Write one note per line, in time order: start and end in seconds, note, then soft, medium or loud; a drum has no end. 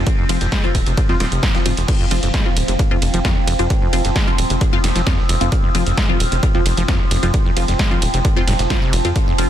0.00 1.87 F3 medium
0.00 1.87 C4 medium
0.07 kick loud
0.07 closed hi-hat medium
0.07 ride medium
0.18 0.24 F2 loud
0.29 0.38 F1 loud
0.29 0.38 F3 medium
0.29 0.39 F3 medium
0.29 0.38 C4 medium
0.29 0.38 F4 loud
0.29 closed hi-hat medium
0.29 open hi-hat loud
0.29 ride medium
0.41 0.49 F1 medium
0.41 0.47 F2 loud
0.41 snare soft
0.41 closed hi-hat medium
0.52 0.65 G#3 loud
0.52 kick loud
0.52 snare loud
0.52 closed hi-hat medium
0.52 closed hi-hat loud
0.52 ride medium
0.64 0.76 F1 medium
0.64 0.72 F3 medium
0.64 0.72 C4 medium
0.64 0.72 F4 loud
0.64 closed hi-hat soft
0.75 0.83 D#1 loud
0.75 0.81 G#2 medium
0.75 kick medium
0.75 closed hi-hat medium
0.75 open hi-hat loud
0.75 ride medium
0.86 0.95 F1 medium
0.86 0.93 C3 medium
0.86 closed hi-hat medium
0.97 kick loud
0.97 closed hi-hat medium
0.97 ride medium
1.09 1.15 F2 loud
1.09 1.17 F3 loud
1.09 1.17 C4 medium
1.09 1.17 F4 loud
1.09 snare soft
1.20 1.29 D#1 medium
1.20 1.24 D#3 medium
1.20 1.29 F3 medium
1.20 1.29 C4 medium
1.20 1.29 F4 loud
1.20 snare loud
1.20 snare medium
1.20 closed hi-hat medium
1.20 open hi-hat loud
1.20 ride medium
1.32 1.40 F1 medium
1.32 1.45 C3 medium
1.32 closed hi-hat medium
1.43 1.49 F2 medium
1.43 kick loud
1.43 snare loud
1.43 closed hi-hat medium
1.43 ride medium
1.55 1.58 D#2 medium
1.55 1.64 F3 medium
1.55 1.64 C4 medium
1.55 1.64 F4 medium
1.55 snare loud
1.55 closed hi-hat medium
1.66 1.74 F1 medium
1.66 1.72 G#2 loud
1.66 1.74 F3 medium
1.66 1.74 C4 medium
1.66 1.74 F4 loud
1.66 open hi-hat loud
1.66 ride medium
1.77 1.86 F1 medium
1.77 1.83 D#2 medium
1.77 closed hi-hat medium
1.88 9.50 F3 medium
1.88 9.50 C4 medium
1.88 kick loud
1.88 closed hi-hat medium
1.88 crash medium
1.88 ride medium
2.00 2.06 F2 loud
2.11 2.20 F1 loud
2.11 2.21 F3 medium
2.11 2.20 F3 medium
2.11 2.20 C4 medium
2.11 2.20 F4 loud
2.11 closed hi-hat medium
2.11 open hi-hat loud
2.11 ride medium
2.23 2.31 F1 medium
2.23 2.29 F2 loud
2.23 closed hi-hat medium
2.23 closed hi-hat soft
2.34 2.47 G#3 loud
2.34 kick loud
2.34 snare loud
2.34 closed hi-hat medium
2.34 ride medium
2.46 2.58 F1 medium
2.46 2.54 F3 medium
2.46 2.54 C4 medium
2.46 2.54 F4 loud
2.57 2.65 D#1 loud
2.57 2.63 G#2 medium
2.57 closed hi-hat medium
2.57 open hi-hat loud
2.57 ride medium
2.68 2.76 F1 medium
2.68 2.74 C3 medium
2.68 closed hi-hat medium
2.68 closed hi-hat soft
2.79 kick loud
2.79 closed hi-hat medium
2.79 ride medium
2.91 2.97 F2 loud
2.91 2.99 F3 loud
2.91 2.99 C4 medium
2.91 2.99 F4 loud
3.02 3.11 F1 medium
3.02 3.08 F2 medium
3.02 closed hi-hat medium
3.02 open hi-hat loud
3.02 ride medium
3.14 3.22 F1 medium
3.14 3.20 F3 loud
3.14 closed hi-hat medium
3.25 3.38 F2 loud
3.25 3.33 F3 medium
3.25 3.33 C4 medium
3.25 3.33 F4 medium
3.25 kick loud
3.25 snare loud
3.25 closed hi-hat medium
3.25 ride medium
3.37 3.43 F1 medium
3.47 3.56 F1 medium
3.47 3.54 F2 loud
3.47 snare medium
3.47 closed hi-hat medium
3.47 open hi-hat loud
3.47 ride medium
3.59 3.67 F1 medium
3.59 3.68 F2 loud
3.59 3.67 F3 medium
3.59 3.67 C4 medium
3.59 3.67 F4 medium
3.59 closed hi-hat medium
3.70 kick loud
3.70 closed hi-hat medium
3.70 ride medium
3.82 3.88 F2 loud
3.93 4.02 F1 loud
3.93 4.02 F3 medium
3.93 4.03 F3 medium
3.93 4.02 C4 medium
3.93 4.02 F4 loud
3.93 closed hi-hat medium
3.93 open hi-hat loud
3.93 ride medium
4.05 4.13 F1 medium
4.05 4.11 F2 loud
4.05 snare soft
4.05 closed hi-hat medium
4.16 4.29 G#3 loud
4.16 kick loud
4.16 snare loud
4.16 closed hi-hat medium
4.16 closed hi-hat loud
4.16 ride medium
4.27 4.40 F1 medium
4.27 4.35 F3 medium
4.27 4.35 C4 medium
4.27 4.35 F4 loud
4.27 closed hi-hat soft
4.38 4.47 D#1 loud
4.38 4.45 G#2 medium
4.38 closed hi-hat medium
4.38 open hi-hat loud
4.38 ride medium
4.50 4.58 F1 medium
4.50 4.56 C3 medium
4.50 closed hi-hat medium
4.61 kick loud
4.61 closed hi-hat medium
4.61 ride medium
4.73 4.79 F2 loud
4.73 4.81 F3 medium
4.73 4.81 C4 medium
4.73 4.81 F4 loud
4.73 snare soft
4.84 4.93 F1 medium
4.84 4.90 F2 medium
4.84 snare medium
4.84 closed hi-hat medium
4.84 open hi-hat loud
4.84 ride medium
4.96 5.04 F1 medium
4.96 5.02 F3 loud
4.96 snare medium
4.96 closed hi-hat medium
5.07 5.20 F2 loud
5.07 5.15 F3 medium
5.07 5.15 C4 medium
5.07 5.15 F4 medium
5.07 kick loud
5.07 snare loud
5.07 closed hi-hat medium
5.07 ride medium
5.18 5.24 F1 medium
5.18 snare soft
5.29 5.38 F1 medium
5.29 5.36 F2 loud
5.29 snare medium
5.29 closed hi-hat medium
5.29 open hi-hat loud
5.29 ride medium
5.41 5.49 F1 medium
5.41 5.50 F2 loud
5.41 5.49 F3 medium
5.41 5.49 C4 medium
5.41 5.49 F4 medium
5.41 closed hi-hat medium
5.52 kick loud
5.52 closed hi-hat medium
5.52 ride soft
5.64 5.70 F2 loud
5.75 5.83 F1 loud
5.75 5.84 F3 medium
5.75 5.83 F3 medium
5.75 5.83 C4 medium
5.75 5.83 F4 loud
5.75 closed hi-hat medium
5.75 open hi-hat loud
5.75 ride medium
5.86 5.95 F1 medium
5.86 5.93 F2 loud
5.86 closed hi-hat medium
5.86 closed hi-hat soft
5.97 6.11 G#3 loud
5.97 kick loud
5.97 snare loud
5.97 closed hi-hat loud
5.97 closed hi-hat medium
5.97 ride medium
6.09 6.22 F1 medium
6.09 6.17 F3 medium
6.09 6.17 C4 medium
6.09 6.17 F4 loud
6.20 6.29 D#1 loud
6.20 6.27 G#2 medium
6.20 closed hi-hat medium
6.20 open hi-hat loud
6.20 ride medium
6.32 6.40 F1 medium
6.32 6.38 C3 medium
6.32 closed hi-hat soft
6.32 closed hi-hat medium
6.43 kick loud
6.43 closed hi-hat medium
6.43 ride medium
6.55 6.61 F2 loud
6.55 6.63 F3 loud
6.55 6.63 C4 medium
6.55 6.63 F4 loud
6.66 6.74 F1 medium
6.66 6.72 F2 medium
6.66 closed hi-hat medium
6.66 open hi-hat loud
6.66 ride medium
6.77 6.86 F1 medium
6.77 6.83 F3 loud
6.77 closed hi-hat medium
6.88 7.02 F2 loud
6.88 6.97 F3 medium
6.88 6.97 C4 medium
6.88 6.97 F4 medium
6.88 kick loud
6.88 snare loud
6.88 closed hi-hat medium
6.88 ride medium
7.00 7.06 F1 medium
7.11 7.20 F1 medium
7.11 7.18 F2 loud
7.11 snare medium
7.11 closed hi-hat medium
7.11 open hi-hat loud
7.11 ride medium
7.23 7.31 F1 medium
7.23 7.32 F2 loud
7.23 7.31 F3 medium
7.23 7.31 C4 medium
7.23 7.31 F4 medium
7.23 closed hi-hat medium
7.34 kick loud
7.34 closed hi-hat medium
7.34 ride medium
7.46 7.52 F2 loud
7.57 7.65 F1 loud
7.57 7.66 F3 medium
7.57 7.65 F3 medium
7.57 7.65 C4 medium
7.57 7.65 F4 loud
7.57 closed hi-hat medium
7.57 open hi-hat loud
7.57 ride medium
7.68 7.76 F1 medium
7.68 7.74 F2 loud
7.68 snare soft
7.68 closed hi-hat medium
7.79 7.93 G#3 loud
7.79 kick loud
7.79 snare loud
7.79 closed hi-hat medium
7.79 ride medium
7.91 8.04 F1 medium
7.91 7.99 F3 medium
7.91 7.99 C4 medium
7.91 7.99 F4 loud
7.91 closed hi-hat soft
8.02 8.11 D#1 loud
8.02 8.08 G#2 medium
8.02 closed hi-hat medium
8.02 open hi-hat loud
8.02 ride medium
8.14 8.22 F1 medium
8.14 8.20 C3 medium
8.14 closed hi-hat medium
8.25 kick loud
8.25 closed hi-hat medium
8.25 ride medium
8.36 8.43 F2 loud
8.36 8.45 F3 loud
8.36 8.45 C4 medium
8.36 8.45 F4 loud
8.36 snare soft
8.47 8.56 F1 medium
8.47 8.54 G#2 loud
8.47 snare medium
8.47 closed hi-hat medium
8.47 open hi-hat loud
8.47 ride medium
8.59 8.67 F1 medium
8.59 8.63 G#2 medium
8.59 snare medium
8.59 closed hi-hat medium
8.70 8.74 F2 loud
8.70 8.79 F3 medium
8.70 8.79 C4 medium
8.70 8.79 F4 medium
8.70 kick loud
8.70 snare loud
8.70 closed hi-hat medium
8.70 ride medium
8.82 8.94 C3 loud
8.82 snare soft
8.93 9.02 F1 loud
8.93 8.97 F2 medium
8.93 snare medium
8.93 closed hi-hat medium
8.93 open hi-hat loud
8.93 ride medium
9.05 9.13 F2 medium
9.05 9.08 C3 medium
9.05 9.13 F3 medium
9.05 9.13 C4 medium
9.05 9.13 F4 medium
9.05 closed hi-hat medium
9.16 kick loud
9.16 closed hi-hat loud
9.16 closed hi-hat medium
9.16 ride medium
9.27 9.33 F2 loud
9.38 9.47 F1 loud
9.38 9.48 F3 medium
9.38 9.47 F3 medium
9.38 9.47 C4 medium
9.38 9.47 F4 loud
9.38 closed hi-hat medium
9.38 open hi-hat loud
9.38 ride medium